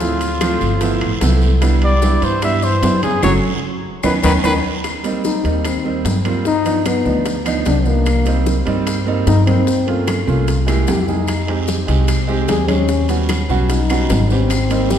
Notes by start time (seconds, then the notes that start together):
Already playing: D2 A2 F4
0.00 F3 A3 C4 E4, high bongo, high conga, long guiro, maracas
0.21 high conga, high timbale, maracas
0.40 F3 A3 C4 F4, high bongo, high conga, high timbale, low timbale, short guiro, claves, maracas
0.60 G1, high bongo, high conga, short guiro, maracas
0.81 F3 A3 B3 E4, high bongo, high conga, high timbale, long guiro, maracas
1.01 A1, high conga, high timbale, claves
1.21 C2 F3 A3 B3 E4, high bongo, low bongo, high conga, high timbale, low timbale, short guiro, maracas
1.42 high bongo, high conga, short guiro, maracas
1.61 G3 B3 D4 E4, high bongo, high conga, high timbale, long guiro, claves, maracas
1.82 G3 D5, high conga, high timbale
2.02 G3 B3 D4 E4, high bongo, high conga, low timbale, short guiro, maracas
2.22 G2 E3 C5, high bongo, high conga, high timbale, short guiro, maracas
2.42 G3 B3 D4 E4 E5, high bongo, high conga, high timbale, long guiro, claves, maracas
2.62 E3 C5, high bongo, high conga, maracas
2.82 F#2 G3 B3 D4 E4, high bongo, low bongo, high conga, high timbale, low timbale, short guiro, maracas
3.03 C#3 G#4, high bongo, high conga, high timbale, short guiro, claves, maracas
3.22 F#1 F#3 A3 C#4 C#5, low bongo, high conga, high timbale, long guiro, claves, maracas
4.03 D#2 D#3 B3 C#4 D#4 B4, low bongo, high conga, high timbale, long guiro, claves, maracas
4.23 D#2 D#3 B3 C#4 D#4 B4, low bongo, high conga, high timbale, long guiro, claves, maracas
4.43 D#2 D#3 B3 C#4 D#4 B4, low bongo, high conga, high timbale, long guiro, claves, maracas
4.84 high bongo, high conga, high timbale, claves, maracas
5.04 G3 A#3 C4 D#4, high conga, high timbale, maracas
5.24 D#4, high bongo, high conga, low timbale, maracas
5.44 D#2 G3 A#3 C4 D#4, high bongo, high timbale, maracas
5.64 C4, high bongo, high conga, high timbale, claves, maracas
5.84 G3 A#3 C4 D#4, high bongo, high conga
6.04 G2, high bongo, low bongo, high conga, high timbale, low timbale, maracas
6.24 G3 A#3 C4 F4, high bongo, high conga, high timbale, claves, maracas
6.45 D#4, high bongo, high conga, maracas
6.64 F3 B3 D4 D#4, high conga, high timbale, maracas
6.85 B3, high bongo, high conga, high timbale, low timbale, claves, maracas
7.05 D2 F3 B3 D4 D#4, high bongo, maracas
7.25 high bongo, high conga, high timbale, maracas
7.45 F3 B3 D4 D#4, high conga, high timbale, claves, maracas
7.65 C2 D4, high bongo, low bongo, high conga, high timbale, low timbale, maracas
7.85 F3 A#3 B3 D4 D#4, high bongo, maracas
8.06 high bongo, high conga, high timbale, claves, maracas
8.25 G3 A#3 C4 D#4, high conga, high timbale, maracas
8.46 high bongo, high conga, low timbale, maracas
8.65 G2 G3 A#3 C4 D#4, high bongo, high conga, high timbale, maracas
8.87 high bongo, high conga, high timbale, claves, maracas
9.06 G3 A#3 C4 D#4, high bongo, high conga
9.27 G2 D#4, high bongo, low bongo, high conga, high timbale, low timbale, maracas
9.46 G3 A#3 C4 D#4, high bongo, high conga, high timbale, claves, maracas
9.67 high bongo, high conga, maracas
9.86 A3 A#3 C#4 F4, high conga, high timbale
10.07 high bongo, high conga, high timbale, low timbale, claves, maracas
10.26 C2 A3 A#3 C#4 F4, high bongo, high conga, maracas
10.48 high bongo, high conga, high timbale, maracas
10.67 G#3 A#3 E4 G4, high conga, high timbale, claves, maracas
10.87 F2 G4, high bongo, low bongo, high conga, high timbale, low timbale, maracas
11.07 G#3 A#3 D#4 E4 G#4, high bongo, high conga, maracas
11.27 high bongo, high conga, high timbale, long guiro, claves, maracas
11.48 G#3 C4 D#4 G4, high conga, high timbale
11.67 high bongo, high conga, low timbale, short guiro, maracas
11.87 C2 G#3 C4 D#4 G4, high bongo, high conga, high timbale, short guiro, maracas
12.08 high bongo, high conga, high timbale, long guiro, claves, maracas
12.28 G#3 C4 D#4 G4, high bongo, high conga
12.48 D#2 G#4, high bongo, low bongo, high conga, high timbale, low timbale, short guiro, maracas
12.68 G#3 C4 C#4 D#4 G4, high bongo, high conga, high timbale, short guiro, claves, maracas
12.88 high bongo, long guiro, maracas
13.08 G3 B3 C#4 F#4, high conga, high timbale, maracas
13.29 high bongo, high conga, high timbale, low timbale, short guiro, claves, maracas
13.49 B1 G3 B3 C#4 F#4, high bongo, high conga, short guiro, maracas
13.69 D#4, high bongo, high conga, high timbale, long guiro, maracas
13.89 G3 B3 C#4 F#4, high conga, high timbale, claves, maracas
14.09 G#1, high bongo, low bongo, high conga, high timbale, low timbale, short guiro, maracas
14.30 G3 B3 C4 C#4 G4, high bongo, short guiro, maracas
14.50 high bongo, high conga, high timbale, long guiro, claves, maracas
14.70 G3 A#3 C4 D#4, high conga, high timbale, maracas
14.90 G4, high bongo, high conga, low timbale, short guiro, maracas